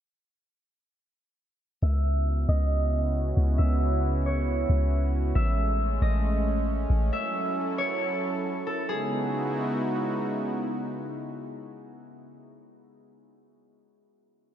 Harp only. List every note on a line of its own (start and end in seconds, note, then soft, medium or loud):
1.83 2.55 E5 medium
2.49 3.64 D#5 medium
3.58 5.30 E5 medium
4.26 6.17 C#5 medium
5.35 6.08 E5 medium
6.02 7.19 D#5 medium
7.13 8.85 E5 medium
7.78 9.69 C#5 medium
8.67 8.95 A4 medium
8.89 11.16 G#4 medium